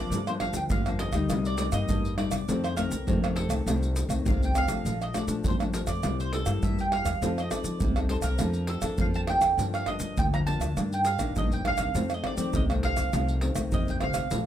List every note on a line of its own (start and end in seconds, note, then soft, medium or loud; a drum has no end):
0.00 0.21 F3 medium
0.00 0.21 A#3 medium
0.00 0.21 D4 medium
0.00 0.27 D5 loud
0.10 0.48 G2 medium
0.10 0.68 G2 medium
0.10 pandeiro medium
0.10 shaker medium
0.10 surdo medium
0.27 0.37 F3 medium
0.27 0.37 A#3 medium
0.27 0.37 D4 medium
0.27 0.32 C5 medium
0.27 pandeiro soft
0.27 tamborim medium
0.27 shaker soft
0.40 0.68 F3 medium
0.40 0.69 A#3 medium
0.40 0.69 D4 medium
0.40 0.55 F5 loud
0.40 pandeiro medium
0.40 tamborim medium
0.40 surdo soft
0.53 0.67 D2 medium
0.53 0.62 G5 medium
0.53 pandeiro medium
0.53 shaker medium
0.70 1.08 G2 loud
0.70 1.27 D3 medium
0.70 1.02 F5 medium
0.70 pandeiro medium
0.70 shaker medium
0.70 surdo loud
0.86 1.11 F3 medium
0.86 1.11 A#3 medium
0.86 1.12 D4 medium
0.86 pandeiro soft
0.86 tamborim medium
0.86 shaker soft
0.99 1.46 D#5 loud
0.99 pandeiro medium
1.12 1.26 D2 loud
1.12 1.54 G3 medium
1.12 1.54 A#3 medium
1.12 1.55 D#4 medium
1.12 pandeiro medium
1.12 tamborim medium
1.12 shaker medium
1.12 surdo soft
1.30 1.68 C2 loud
1.30 1.87 C3 soft
1.30 pandeiro medium
1.30 tamborim medium
1.30 shaker medium
1.30 surdo medium
1.45 1.59 D5 medium
1.45 pandeiro soft
1.45 shaker soft
1.58 1.69 G3 medium
1.58 1.70 A#3 medium
1.58 1.70 D#4 medium
1.58 1.66 D5 medium
1.58 pandeiro medium
1.58 shaker medium
1.72 1.86 G2 medium
1.72 2.13 G3 medium
1.72 2.13 A#3 medium
1.72 2.14 D#4 medium
1.72 2.15 D#5 medium
1.72 pandeiro medium
1.72 tamborim medium
1.72 shaker medium
1.72 surdo soft
1.89 2.27 G2 loud
1.89 2.46 G2 medium
1.89 pandeiro medium
1.89 shaker medium
1.89 surdo medium
2.05 pandeiro soft
2.05 shaker soft
2.17 2.37 G3 soft
2.17 2.37 A#3 soft
2.17 2.38 D#4 medium
2.17 2.63 D5 medium
2.17 pandeiro medium
2.17 tamborim medium
2.31 2.45 C3 medium
2.31 pandeiro medium
2.31 tamborim loud
2.31 shaker loud
2.31 surdo soft
2.48 2.86 F2 loud
2.48 3.05 F2 medium
2.48 2.73 D#3 medium
2.48 2.74 A3 medium
2.48 2.74 C4 medium
2.48 pandeiro medium
2.48 shaker medium
2.48 surdo medium
2.64 2.76 C5 medium
2.64 pandeiro soft
2.64 tamborim medium
2.64 shaker soft
2.77 2.95 D#3 medium
2.77 2.95 A3 medium
2.77 2.96 C4 medium
2.77 3.38 A#4 medium
2.77 pandeiro medium
2.77 tamborim medium
2.77 shaker medium
2.77 surdo soft
2.90 3.04 C2 medium
2.90 pandeiro medium
2.90 shaker medium
3.07 3.45 F2 medium
3.07 3.64 C3 medium
3.07 3.18 D#3 medium
3.07 3.18 A3 medium
3.07 3.18 C4 medium
3.07 pandeiro medium
3.07 shaker medium
3.07 surdo loud
3.23 3.48 D#3 soft
3.23 3.48 A3 medium
3.23 3.48 C4 medium
3.23 pandeiro soft
3.23 tamborim loud
3.23 shaker soft
3.36 4.51 A4 medium
3.36 pandeiro medium
3.49 3.63 C2 loud
3.49 3.61 D#3 medium
3.49 3.61 A3 medium
3.49 3.62 C4 medium
3.49 pandeiro medium
3.49 tamborim medium
3.49 shaker medium
3.49 surdo soft
3.66 4.04 C2 loud
3.66 4.23 F2 medium
3.66 4.07 D#3 medium
3.66 4.07 A3 medium
3.66 4.07 C4 soft
3.66 pandeiro medium
3.66 tamborim medium
3.66 shaker medium
3.66 surdo medium
3.83 pandeiro soft
3.83 shaker soft
3.96 pandeiro medium
3.96 shaker medium
4.09 4.22 C2 loud
4.09 4.50 D#3 medium
4.09 4.50 A3 medium
4.09 4.50 C4 medium
4.09 pandeiro medium
4.09 tamborim medium
4.09 shaker medium
4.09 surdo soft
4.25 4.64 C2 loud
4.25 4.82 C3 medium
4.25 4.41 F5 medium
4.25 pandeiro medium
4.25 shaker medium
4.25 surdo loud
4.43 4.57 G5 medium
4.43 pandeiro soft
4.43 shaker soft
4.54 4.64 D#3 soft
4.54 4.64 A3 soft
4.54 4.64 C4 soft
4.54 4.98 F5 loud
4.54 pandeiro medium
4.54 tamborim medium
4.54 shaker medium
4.68 4.82 F2 medium
4.68 5.09 F3 medium
4.68 5.09 A3 medium
4.68 5.09 D4 medium
4.68 pandeiro medium
4.68 tamborim medium
4.68 shaker medium
4.68 surdo soft
4.85 5.10 A#1 medium
4.85 5.42 A#2 medium
4.85 pandeiro medium
4.85 shaker medium
4.85 surdo medium
5.02 5.17 D#5 medium
5.02 pandeiro soft
5.02 tamborim medium
5.02 shaker soft
5.14 5.23 F3 medium
5.14 5.23 A3 medium
5.14 5.24 D4 medium
5.14 5.25 D5 medium
5.14 pandeiro medium
5.14 tamborim medium
5.14 shaker medium
5.14 surdo soft
5.27 5.41 A#2 medium
5.27 5.53 F3 medium
5.27 5.54 A3 medium
5.27 5.54 D4 medium
5.27 pandeiro medium
5.27 shaker medium
5.44 5.82 F2 medium
5.44 6.01 F2 medium
5.44 5.55 C5 medium
5.44 pandeiro medium
5.44 shaker medium
5.44 surdo loud
5.60 5.70 F3 medium
5.60 5.70 A3 medium
5.60 5.70 D4 medium
5.60 pandeiro soft
5.60 tamborim medium
5.60 shaker soft
5.73 5.91 F3 medium
5.73 5.91 A3 medium
5.73 5.91 D4 medium
5.73 5.80 A#4 medium
5.73 pandeiro medium
5.73 shaker medium
5.87 6.00 F2 medium
5.87 6.16 D5 loud
5.87 pandeiro medium
5.87 tamborim medium
5.87 shaker medium
5.87 surdo soft
6.03 6.42 C2 loud
6.03 6.60 C3 soft
6.03 6.43 G3 soft
6.03 6.43 A#3 soft
6.03 6.43 E4 medium
6.03 pandeiro medium
6.03 tamborim medium
6.03 shaker medium
6.03 surdo medium
6.20 6.33 C5 medium
6.20 pandeiro soft
6.20 shaker soft
6.33 6.64 A4 medium
6.33 pandeiro medium
6.46 6.60 G2 medium
6.46 6.87 G3 medium
6.46 6.87 A#3 soft
6.46 6.87 E4 medium
6.46 pandeiro medium
6.46 tamborim medium
6.46 shaker medium
6.46 surdo soft
6.63 7.19 G2 medium
6.63 7.01 G2 loud
6.63 6.77 E5 medium
6.63 pandeiro medium
6.63 shaker medium
6.63 surdo medium
6.79 6.86 G5 medium
6.79 pandeiro soft
6.79 shaker soft
6.92 7.11 G3 soft
6.92 7.11 A#3 soft
6.92 7.12 E4 medium
6.92 7.38 F5 medium
6.92 pandeiro medium
6.92 tamborim medium
7.05 7.18 E2 medium
7.05 pandeiro medium
7.05 tamborim medium
7.05 shaker medium
7.05 surdo soft
7.22 7.47 F2 medium
7.22 7.78 F3 medium
7.22 7.40 C4 medium
7.22 7.40 D#4 soft
7.22 7.40 A4 medium
7.22 pandeiro medium
7.22 shaker medium
7.22 surdo medium
7.38 7.51 D#5 loud
7.38 pandeiro soft
7.38 tamborim medium
7.38 shaker soft
7.51 7.91 C4 medium
7.51 7.91 D#4 medium
7.51 7.91 A4 medium
7.51 8.10 D5 medium
7.51 pandeiro medium
7.51 tamborim medium
7.51 shaker medium
7.51 surdo soft
7.64 7.78 F3 medium
7.64 pandeiro medium
7.64 shaker medium
7.80 8.19 C2 loud
7.80 8.38 C3 medium
7.80 pandeiro medium
7.80 shaker medium
7.80 surdo loud
7.96 8.07 C4 soft
7.96 8.07 D#4 medium
7.96 8.07 A4 medium
7.96 pandeiro soft
7.96 tamborim medium
7.96 shaker soft
8.09 8.28 C4 medium
8.09 8.28 D#4 medium
8.09 8.28 A4 medium
8.09 8.16 C5 medium
8.09 pandeiro medium
8.09 surdo soft
8.22 8.37 C2 medium
8.22 8.69 A#4 loud
8.22 pandeiro medium
8.22 tamborim medium
8.22 shaker medium
8.22 surdo soft
8.39 8.78 F2 loud
8.39 8.96 F3 soft
8.39 8.68 A#3 soft
8.39 8.68 D4 soft
8.39 8.68 A4 medium
8.39 pandeiro medium
8.39 tamborim medium
8.39 shaker medium
8.39 surdo medium
8.53 pandeiro soft
8.53 shaker soft
8.67 8.97 A4 medium
8.67 pandeiro medium
8.82 8.96 F2 medium
8.82 9.23 A#3 medium
8.82 9.23 D4 medium
8.82 9.24 A4 medium
8.82 pandeiro medium
8.82 tamborim medium
8.82 shaker medium
8.82 surdo soft
8.98 9.36 F2 medium
8.98 9.56 F3 medium
8.98 9.06 F5 medium
8.98 pandeiro medium
8.98 shaker medium
8.98 surdo loud
9.14 9.21 A5 loud
9.14 pandeiro soft
9.14 shaker soft
9.27 9.56 A#3 soft
9.27 9.56 D4 medium
9.27 9.56 A4 medium
9.27 9.75 G5 loud
9.27 pandeiro medium
9.27 tamborim medium
9.41 9.55 F2 medium
9.41 pandeiro medium
9.41 tamborim medium
9.41 shaker medium
9.41 surdo soft
9.57 9.83 G2 medium
9.57 10.15 G2 medium
9.57 9.83 F3 medium
9.57 9.84 A#3 medium
9.57 9.84 D4 medium
9.57 pandeiro medium
9.57 shaker medium
9.57 surdo medium
9.74 9.89 F5 loud
9.74 pandeiro soft
9.74 tamborim medium
9.74 shaker soft
9.86 10.16 F3 soft
9.86 10.16 A#3 medium
9.86 10.16 D4 medium
9.86 10.18 D#5 loud
9.86 pandeiro medium
9.86 tamborim medium
9.86 surdo soft
10.00 10.14 G3 medium
10.00 pandeiro medium
10.00 shaker medium
10.18 10.55 D2 loud
10.18 10.74 D3 medium
10.18 10.24 G5 loud
10.18 pandeiro medium
10.18 shaker medium
10.18 surdo loud
10.33 10.43 F3 medium
10.33 10.43 A#3 soft
10.33 10.43 D4 medium
10.33 10.39 A#5 loud
10.33 pandeiro soft
10.33 tamborim medium
10.33 shaker soft
10.47 10.72 F3 medium
10.47 10.72 A#3 medium
10.47 10.72 D4 medium
10.47 10.93 A5 loud
10.47 pandeiro medium
10.59 10.73 D2 medium
10.59 pandeiro medium
10.59 tamborim medium
10.59 shaker medium
10.59 surdo soft
10.77 11.15 G2 loud
10.77 11.34 G2 soft
10.77 11.05 D#3 soft
10.77 11.05 A#3 soft
10.77 11.05 D4 medium
10.77 pandeiro medium
10.77 tamborim medium
10.77 shaker medium
10.77 surdo medium
10.92 10.99 G5 medium
10.92 pandeiro soft
10.92 shaker soft
11.05 11.37 F5 loud
11.05 pandeiro medium
11.05 shaker medium
11.19 11.32 A#1 medium
11.19 11.60 D#3 medium
11.19 11.60 A#3 medium
11.19 11.60 D4 medium
11.19 pandeiro medium
11.19 tamborim medium
11.19 shaker medium
11.19 surdo soft
11.36 11.74 A#1 medium
11.36 11.92 G2 medium
11.36 11.51 D#5 medium
11.36 pandeiro medium
11.36 shaker medium
11.36 surdo loud
11.52 11.67 G5 medium
11.52 pandeiro soft
11.52 shaker soft
11.65 11.92 D#3 medium
11.65 11.93 A#3 soft
11.65 11.93 D4 medium
11.65 12.12 F5 loud
11.65 pandeiro medium
11.65 tamborim medium
11.78 11.92 C2 medium
11.78 pandeiro medium
11.78 tamborim loud
11.78 shaker medium
11.78 surdo soft
11.95 12.20 F2 medium
11.95 12.51 F2 medium
11.95 12.13 D#3 soft
11.95 12.13 A3 medium
11.95 12.13 C4 medium
11.95 pandeiro medium
11.95 shaker medium
11.95 surdo medium
12.10 pandeiro soft
12.10 tamborim medium
12.10 shaker soft
12.14 12.26 D#5 medium
12.23 12.33 D#3 medium
12.23 12.33 A3 soft
12.23 12.33 C4 medium
12.23 12.53 D5 loud
12.23 pandeiro medium
12.23 tamborim medium
12.23 surdo soft
12.37 12.63 D#3 medium
12.37 12.51 F3 medium
12.37 12.63 A3 medium
12.37 12.64 C4 medium
12.37 pandeiro medium
12.37 shaker medium
12.53 12.92 C2 medium
12.53 13.11 C3 medium
12.53 12.64 D#5 medium
12.53 pandeiro medium
12.53 shaker medium
12.53 surdo loud
12.70 13.09 D#3 medium
12.70 13.09 A3 medium
12.70 13.10 C4 medium
12.70 pandeiro soft
12.70 tamborim medium
12.70 shaker soft
12.83 13.76 F5 loud
12.83 pandeiro medium
12.83 surdo soft
12.96 13.10 C2 medium
12.96 pandeiro medium
12.96 tamborim medium
12.96 shaker medium
12.96 surdo soft
13.13 13.51 C2 loud
13.13 13.70 F2 soft
13.13 13.38 D#3 soft
13.13 13.39 A3 medium
13.13 13.39 C4 medium
13.13 pandeiro medium
13.13 tamborim medium
13.13 shaker medium
13.13 surdo medium
13.28 pandeiro soft
13.28 shaker soft
13.41 13.51 D#3 medium
13.41 13.51 A3 medium
13.41 13.52 C4 medium
13.41 pandeiro medium
13.55 13.69 C2 medium
13.55 13.96 D#3 medium
13.55 13.97 A3 medium
13.55 13.97 C4 medium
13.55 pandeiro medium
13.55 tamborim medium
13.55 shaker medium
13.55 surdo soft
13.72 13.86 F2 medium
13.72 14.29 C3 medium
13.72 13.88 D#5 medium
13.72 pandeiro medium
13.72 shaker medium
13.72 surdo loud
13.88 14.01 D#2 medium
13.88 13.95 G5 medium
13.88 pandeiro soft
13.88 shaker soft
14.01 14.13 D2 medium
14.01 14.21 D#3 soft
14.01 14.21 A3 soft
14.01 14.21 C4 medium
14.01 14.46 F5 medium
14.01 pandeiro medium
14.01 tamborim medium
14.14 14.29 C2 medium
14.14 pandeiro medium
14.14 tamborim medium
14.14 shaker medium
14.14 surdo soft
14.31 14.46 A#1 medium
14.31 14.46 A#2 soft
14.31 14.42 F3 medium
14.31 14.42 A3 soft
14.31 14.42 D4 soft
14.31 pandeiro medium
14.31 shaker medium
14.31 surdo medium